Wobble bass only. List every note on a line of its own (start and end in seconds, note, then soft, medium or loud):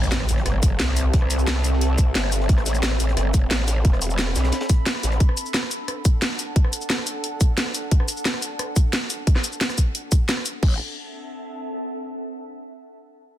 0.00 0.27 A1 loud
0.29 0.44 A1 loud
0.46 0.78 G1 loud
0.80 2.14 C2 medium
2.15 2.48 G1 loud
2.49 2.99 A1 medium
3.00 3.16 A1 medium
3.17 3.50 G1 loud
3.51 3.83 A1 loud
3.85 4.34 E1 loud
4.36 4.51 B1 loud
5.03 5.19 A1 loud
10.63 10.78 A1 loud